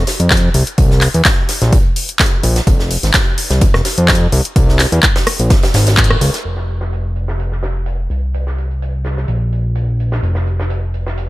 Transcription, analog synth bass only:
0, 0, Header, 1, 2, 480
1, 0, Start_track
1, 0, Key_signature, -4, "minor"
1, 0, Tempo, 472441
1, 793, Time_signature, 4, 2, 24, 8
1, 11474, End_track
2, 0, Start_track
2, 0, Title_t, "Analog synth bass"
2, 0, Program_c, 0, 38
2, 201, Note_on_c, 0, 41, 80
2, 500, Note_off_c, 0, 41, 0
2, 555, Note_on_c, 0, 36, 95
2, 645, Note_off_c, 0, 36, 0
2, 793, Note_on_c, 0, 36, 99
2, 1101, Note_off_c, 0, 36, 0
2, 1163, Note_on_c, 0, 40, 101
2, 1241, Note_off_c, 0, 40, 0
2, 1643, Note_on_c, 0, 34, 96
2, 1807, Note_off_c, 0, 34, 0
2, 2473, Note_on_c, 0, 34, 84
2, 2648, Note_off_c, 0, 34, 0
2, 2713, Note_on_c, 0, 29, 102
2, 3021, Note_off_c, 0, 29, 0
2, 3082, Note_on_c, 0, 32, 105
2, 3161, Note_off_c, 0, 32, 0
2, 3561, Note_on_c, 0, 36, 98
2, 3726, Note_off_c, 0, 36, 0
2, 3802, Note_on_c, 0, 29, 88
2, 3880, Note_off_c, 0, 29, 0
2, 4042, Note_on_c, 0, 41, 84
2, 4341, Note_off_c, 0, 41, 0
2, 4392, Note_on_c, 0, 36, 92
2, 4484, Note_off_c, 0, 36, 0
2, 4632, Note_on_c, 0, 36, 97
2, 4941, Note_off_c, 0, 36, 0
2, 5001, Note_on_c, 0, 40, 106
2, 5080, Note_off_c, 0, 40, 0
2, 5481, Note_on_c, 0, 34, 103
2, 5646, Note_off_c, 0, 34, 0
2, 5832, Note_on_c, 0, 32, 97
2, 6261, Note_off_c, 0, 32, 0
2, 6312, Note_on_c, 0, 37, 90
2, 6404, Note_off_c, 0, 37, 0
2, 6553, Note_on_c, 0, 29, 82
2, 8211, Note_off_c, 0, 29, 0
2, 8232, Note_on_c, 0, 36, 85
2, 9410, Note_off_c, 0, 36, 0
2, 9432, Note_on_c, 0, 34, 86
2, 10370, Note_off_c, 0, 34, 0
2, 10393, Note_on_c, 0, 29, 83
2, 11474, Note_off_c, 0, 29, 0
2, 11474, End_track
0, 0, End_of_file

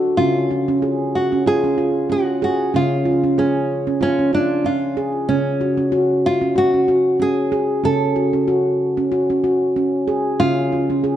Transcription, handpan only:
0, 0, Header, 1, 2, 480
1, 0, Start_track
1, 0, Key_signature, 7, "major"
1, 0, Tempo, 638298
1, 142, Time_signature, 4, 2, 24, 8
1, 8395, End_track
2, 0, Start_track
2, 0, Title_t, "Handpan"
2, 0, Program_c, 0, 114
2, 0, Note_on_c, 0, 50, 67
2, 0, Note_on_c, 0, 66, 74
2, 109, Note_off_c, 0, 50, 0
2, 139, Note_on_c, 0, 61, 67
2, 142, Note_off_c, 0, 66, 0
2, 144, Note_on_c, 0, 49, 66
2, 381, Note_off_c, 0, 61, 0
2, 381, Note_on_c, 0, 65, 51
2, 513, Note_on_c, 0, 61, 65
2, 514, Note_off_c, 0, 65, 0
2, 619, Note_on_c, 0, 68, 56
2, 621, Note_off_c, 0, 61, 0
2, 860, Note_off_c, 0, 68, 0
2, 994, Note_on_c, 0, 61, 60
2, 1100, Note_on_c, 0, 65, 66
2, 1101, Note_off_c, 0, 61, 0
2, 1232, Note_on_c, 0, 61, 64
2, 1233, Note_off_c, 0, 65, 0
2, 1337, Note_on_c, 0, 65, 61
2, 1340, Note_off_c, 0, 61, 0
2, 1576, Note_on_c, 0, 61, 66
2, 1579, Note_off_c, 0, 65, 0
2, 1818, Note_off_c, 0, 61, 0
2, 1821, Note_on_c, 0, 68, 75
2, 2031, Note_off_c, 0, 49, 0
2, 2060, Note_off_c, 0, 68, 0
2, 2061, Note_on_c, 0, 61, 70
2, 2067, Note_on_c, 0, 49, 74
2, 2297, Note_on_c, 0, 65, 57
2, 2301, Note_off_c, 0, 61, 0
2, 2431, Note_off_c, 0, 65, 0
2, 2434, Note_on_c, 0, 61, 61
2, 2540, Note_off_c, 0, 61, 0
2, 2543, Note_on_c, 0, 68, 68
2, 2781, Note_off_c, 0, 68, 0
2, 2910, Note_on_c, 0, 61, 64
2, 3013, Note_on_c, 0, 65, 72
2, 3018, Note_off_c, 0, 61, 0
2, 3149, Note_off_c, 0, 65, 0
2, 3150, Note_on_c, 0, 61, 58
2, 3255, Note_on_c, 0, 65, 58
2, 3258, Note_off_c, 0, 61, 0
2, 3493, Note_on_c, 0, 61, 63
2, 3497, Note_off_c, 0, 65, 0
2, 3736, Note_off_c, 0, 61, 0
2, 3737, Note_on_c, 0, 68, 66
2, 3953, Note_off_c, 0, 49, 0
2, 3978, Note_off_c, 0, 68, 0
2, 3978, Note_on_c, 0, 49, 68
2, 3978, Note_on_c, 0, 61, 74
2, 4217, Note_on_c, 0, 66, 58
2, 4219, Note_off_c, 0, 61, 0
2, 4343, Note_on_c, 0, 61, 65
2, 4351, Note_off_c, 0, 66, 0
2, 4452, Note_on_c, 0, 66, 68
2, 4455, Note_off_c, 0, 61, 0
2, 4696, Note_off_c, 0, 66, 0
2, 4823, Note_on_c, 0, 61, 63
2, 4931, Note_on_c, 0, 66, 68
2, 4935, Note_off_c, 0, 61, 0
2, 5065, Note_on_c, 0, 61, 60
2, 5068, Note_off_c, 0, 66, 0
2, 5174, Note_on_c, 0, 66, 65
2, 5176, Note_off_c, 0, 61, 0
2, 5412, Note_on_c, 0, 61, 63
2, 5417, Note_off_c, 0, 66, 0
2, 5654, Note_on_c, 0, 68, 74
2, 5656, Note_off_c, 0, 61, 0
2, 5869, Note_off_c, 0, 49, 0
2, 5894, Note_on_c, 0, 61, 74
2, 5897, Note_off_c, 0, 68, 0
2, 5900, Note_on_c, 0, 49, 66
2, 6134, Note_on_c, 0, 66, 56
2, 6137, Note_off_c, 0, 61, 0
2, 6266, Note_on_c, 0, 61, 65
2, 6270, Note_off_c, 0, 66, 0
2, 6374, Note_on_c, 0, 66, 63
2, 6377, Note_off_c, 0, 61, 0
2, 6617, Note_off_c, 0, 66, 0
2, 6748, Note_on_c, 0, 61, 64
2, 6856, Note_on_c, 0, 66, 67
2, 6858, Note_off_c, 0, 61, 0
2, 6991, Note_off_c, 0, 66, 0
2, 6993, Note_on_c, 0, 61, 60
2, 7097, Note_on_c, 0, 66, 64
2, 7100, Note_off_c, 0, 61, 0
2, 7339, Note_off_c, 0, 66, 0
2, 7342, Note_on_c, 0, 61, 64
2, 7577, Note_on_c, 0, 68, 70
2, 7582, Note_off_c, 0, 61, 0
2, 7791, Note_off_c, 0, 49, 0
2, 7819, Note_off_c, 0, 68, 0
2, 7819, Note_on_c, 0, 61, 77
2, 7825, Note_on_c, 0, 49, 62
2, 8061, Note_off_c, 0, 61, 0
2, 8064, Note_on_c, 0, 65, 54
2, 8195, Note_on_c, 0, 61, 64
2, 8196, Note_off_c, 0, 65, 0
2, 8300, Note_on_c, 0, 68, 64
2, 8302, Note_off_c, 0, 61, 0
2, 8395, Note_off_c, 0, 49, 0
2, 8395, Note_off_c, 0, 68, 0
2, 8395, End_track
0, 0, End_of_file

